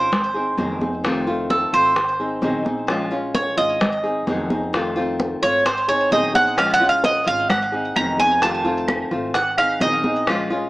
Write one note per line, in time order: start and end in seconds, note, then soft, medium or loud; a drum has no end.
0.00 0.54 G#1 medium
0.00 0.12 G#3 soft
0.00 0.11 C#4 soft
0.00 0.11 F4 medium
0.00 0.54 C5 loud
0.12 muted nylon-string guitar stroke medium
0.12 high bongo medium
0.12 high conga soft
0.12 low conga medium
0.34 0.57 C4 soft
0.34 0.57 D#4 soft
0.34 0.57 G#4 medium
0.34 high conga soft
0.57 1.67 F1 medium
0.57 0.80 D#3 medium
0.57 0.80 F#3 medium
0.57 0.80 C4 medium
0.57 0.81 D#4 medium
0.57 0.79 G#4 medium
0.57 high bongo soft
0.57 low bongo medium
0.57 high conga medium
0.81 1.04 C4 soft
0.81 1.04 D#4 soft
0.81 1.03 G#4 soft
0.81 high bongo soft
0.81 high conga medium
1.04 1.26 C3 medium
1.04 1.26 D#3 medium
1.04 1.26 A3 medium
1.04 1.26 C4 medium
1.04 1.26 F4 medium
1.04 high bongo medium
1.04 high conga soft
1.27 1.73 D#3 medium
1.27 1.73 A3 medium
1.27 1.73 C4 medium
1.27 1.72 F4 medium
1.27 high bongo soft
1.27 high conga soft
1.50 1.73 A4 medium
1.50 high bongo medium
1.50 high conga loud
1.73 2.38 G#1 medium
1.73 1.96 A3 soft
1.73 1.95 C4 medium
1.73 1.95 F4 soft
1.73 2.39 C5 medium
1.73 high bongo soft
1.73 high conga soft
1.95 muted nylon-string guitar stroke medium
1.95 high bongo medium
1.95 high conga soft
2.20 2.42 C4 soft
2.20 2.42 D#4 soft
2.20 2.42 G#4 medium
2.20 high conga soft
2.42 3.51 A#1 medium
2.42 2.64 D#3 medium
2.42 2.64 F#3 medium
2.42 2.65 C4 medium
2.42 2.64 D#4 medium
2.42 2.63 G#4 medium
2.42 high bongo soft
2.42 low bongo medium
2.42 high conga medium
2.65 2.88 C4 soft
2.65 2.88 D#4 soft
2.65 2.87 G#4 soft
2.65 high bongo soft
2.65 high conga medium
2.87 3.10 F3 medium
2.87 3.11 G#3 medium
2.87 3.10 C#4 medium
2.87 3.09 F4 medium
2.87 high bongo medium
2.87 high conga soft
3.11 3.57 G#3 medium
3.11 3.57 C#4 medium
3.11 3.56 F4 medium
3.11 high bongo soft
3.11 high conga soft
3.34 3.57 C#5 medium
3.34 high bongo medium
3.34 high conga medium
3.57 4.23 G#1 medium
3.57 3.81 G#3 soft
3.57 3.80 C#4 soft
3.57 3.80 F4 medium
3.57 4.23 D#5 medium
3.57 high bongo soft
3.57 high conga soft
3.80 muted nylon-string guitar stroke medium
3.80 high bongo medium
3.80 high conga soft
3.80 low conga medium
4.03 4.27 C4 soft
4.03 4.26 D#4 soft
4.03 4.26 G#4 medium
4.03 high conga soft
4.27 5.36 F1 loud
4.27 4.49 D#3 medium
4.27 4.50 F#3 medium
4.27 4.50 C4 medium
4.27 4.50 D#4 medium
4.27 4.49 G#4 medium
4.27 high bongo soft
4.27 low bongo medium
4.27 high conga medium
4.50 4.73 C4 soft
4.50 4.73 D#4 soft
4.50 4.72 G#4 soft
4.50 high bongo soft
4.50 high conga medium
4.73 4.95 C3 medium
4.73 4.95 D#3 medium
4.73 4.96 A3 medium
4.73 4.96 C4 medium
4.73 4.94 F4 medium
4.73 high bongo medium
4.73 high conga soft
4.96 5.42 D#3 medium
4.96 5.42 A3 medium
4.96 5.42 C4 medium
4.96 5.41 F4 medium
4.96 high bongo soft
4.96 high conga soft
5.20 high bongo medium
5.20 high conga medium
5.42 6.08 G#1 medium
5.42 5.65 A3 soft
5.42 5.64 C4 soft
5.42 5.64 F4 soft
5.42 5.65 C#5 loud
5.42 high bongo soft
5.42 high conga soft
5.65 5.88 C5 medium
5.65 muted nylon-string guitar stroke medium
5.65 high bongo medium
5.65 high conga soft
5.88 6.11 C4 soft
5.88 6.11 D#4 soft
5.88 6.10 G#4 medium
5.88 6.11 C#5 medium
5.88 high conga soft
6.11 7.21 A#1 medium
6.11 6.33 D#3 medium
6.11 6.34 F#3 medium
6.11 6.34 C4 medium
6.11 6.34 D#4 medium
6.11 6.32 G#4 medium
6.11 6.34 D#5 medium
6.11 high bongo soft
6.11 low bongo medium
6.11 high conga medium
6.34 6.57 C4 soft
6.34 6.57 D#4 soft
6.34 6.56 G#4 soft
6.34 6.57 F#5 loud
6.34 high bongo soft
6.34 high conga medium
6.57 6.79 F3 medium
6.57 6.80 G#3 medium
6.57 6.80 C#4 medium
6.57 6.79 F4 medium
6.57 6.73 F5 medium
6.57 high bongo medium
6.57 high conga soft
6.57 claves medium
6.74 6.88 F#5 loud
6.80 7.27 G#3 soft
6.80 7.26 C#4 medium
6.80 7.25 F4 medium
6.80 high bongo soft
6.80 high conga soft
6.89 7.04 F5 medium
7.04 7.27 D#5 medium
7.04 high bongo medium
7.04 high conga medium
7.26 7.92 G#1 loud
7.26 7.49 G#3 soft
7.26 7.49 C#4 medium
7.26 7.49 F4 medium
7.26 7.50 F5 loud
7.26 high bongo soft
7.26 high conga soft
7.49 7.93 F#5 medium
7.49 muted nylon-string guitar stroke medium
7.49 high bongo medium
7.49 high conga soft
7.49 low conga medium
7.49 claves medium
7.72 7.95 C4 soft
7.72 7.95 D#4 soft
7.72 7.95 G#4 medium
7.72 high conga soft
7.95 9.05 F1 medium
7.95 8.18 D#3 medium
7.95 8.18 F#3 medium
7.95 8.19 C4 medium
7.95 8.18 D#4 medium
7.95 8.17 G#4 medium
7.95 8.19 A#5 loud
7.95 high bongo soft
7.95 low bongo medium
7.95 high conga medium
7.95 claves medium
8.18 8.42 C4 soft
8.18 8.41 D#4 soft
8.18 8.41 G#4 soft
8.18 8.42 G#5 loud
8.18 high bongo soft
8.18 high conga medium
8.41 8.64 C3 medium
8.41 8.65 D#3 medium
8.41 8.65 A3 medium
8.41 8.64 C4 medium
8.41 8.63 F4 medium
8.41 9.08 A5 medium
8.41 high bongo medium
8.41 high conga soft
8.64 9.11 D#3 medium
8.64 9.11 A3 medium
8.64 9.11 C4 medium
8.64 9.10 F4 medium
8.64 high bongo soft
8.64 high conga soft
8.88 high bongo medium
8.88 high conga loud
8.88 claves medium
9.11 9.77 G#1 loud
9.11 9.35 A3 soft
9.11 9.34 C4 medium
9.11 9.34 F4 medium
9.11 high bongo soft
9.11 high conga soft
9.34 9.57 F#5 medium
9.34 muted nylon-string guitar stroke medium
9.34 high bongo medium
9.34 high conga soft
9.57 9.81 C4 soft
9.57 9.80 D#4 soft
9.57 9.80 G#4 soft
9.57 9.80 F5 loud
9.57 high conga soft
9.57 claves medium
9.80 10.70 A#1 medium
9.80 10.03 D#3 medium
9.80 10.03 F#3 medium
9.80 10.04 C4 medium
9.80 10.04 D#4 medium
9.80 10.03 G#4 medium
9.80 10.24 D#5 medium
9.80 high bongo soft
9.80 low bongo medium
9.80 high conga medium
10.04 10.27 C4 soft
10.04 10.27 D#4 soft
10.04 10.26 G#4 soft
10.04 high bongo soft
10.04 high conga medium
10.27 10.50 F3 medium
10.27 10.50 G#3 medium
10.27 10.50 C#4 medium
10.27 10.49 F4 loud
10.27 high bongo medium
10.27 high conga soft
10.27 claves medium
10.50 10.70 G#3 medium
10.50 10.70 C#4 medium
10.50 10.70 F4 medium
10.50 high bongo soft
10.50 high conga soft